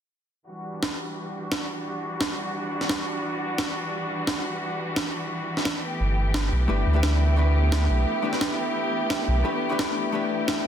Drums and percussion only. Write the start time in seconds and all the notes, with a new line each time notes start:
0.83 snare
1.52 snare
2.21 snare
2.81 snare
2.89 snare
3.58 snare
4.27 snare
4.96 snare
5.57 snare
5.65 snare
6.34 snare
7.03 snare
7.72 snare
8.33 snare
8.41 snare
9.10 snare
9.79 snare
10.48 snare